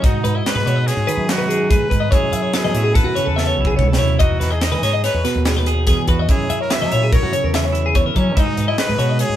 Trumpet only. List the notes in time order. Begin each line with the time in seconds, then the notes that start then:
0.05 D#4
0.36 E4
0.46 B4
0.87 G#4
1.31 F#4
1.71 B4
2.13 G#4
2.55 G#4
2.96 B4
3.39 A4
3.99 E4
4.21 F#4
4.52 G#4
4.62 D#5
5.04 B4
6.08 F#4
6.30 G#4
6.61 A#4
6.72 E5
7.14 C#5
8.17 C#4
8.38 D#4
8.68 E4
8.79 B4
9.20 G#4